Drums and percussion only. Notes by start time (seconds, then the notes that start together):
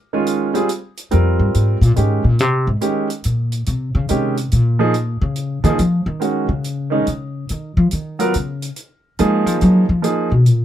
0.26 closed hi-hat
0.55 closed hi-hat
0.69 closed hi-hat
0.97 closed hi-hat
1.11 closed hi-hat
1.54 closed hi-hat
1.82 closed hi-hat
1.96 closed hi-hat
2.39 closed hi-hat
2.81 closed hi-hat
3.10 closed hi-hat
3.24 closed hi-hat
3.52 closed hi-hat
3.66 closed hi-hat
4.09 closed hi-hat
4.37 closed hi-hat
4.52 closed hi-hat
4.94 closed hi-hat
5.36 closed hi-hat
5.64 closed hi-hat
5.79 closed hi-hat
6.21 closed hi-hat
6.64 closed hi-hat
7.07 closed hi-hat
7.49 closed hi-hat
7.91 closed hi-hat
8.20 closed hi-hat
8.34 closed hi-hat
8.62 closed hi-hat
8.76 closed hi-hat
9.19 closed hi-hat
9.47 closed hi-hat
9.61 closed hi-hat
10.04 closed hi-hat
10.46 closed hi-hat